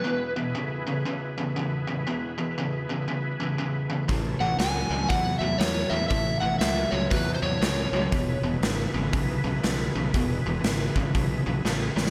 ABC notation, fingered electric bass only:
X:1
M:4/4
L:1/8
Q:"Swing" 1/4=119
K:E
V:1 name="Fingered electric bass" clef=bass
z8 | z8 | A,,, A,,, C,, C,, E,, E,, E,, E,, | A,,, A,,, C,, C,, E,, E,, C,, C,, |
E,,, E,,, G,,, G,,, B,,, B,,, B,,, B,,, | E,,, E,,, G,,, G,,, B,,, B,,, A,,, A,,, |]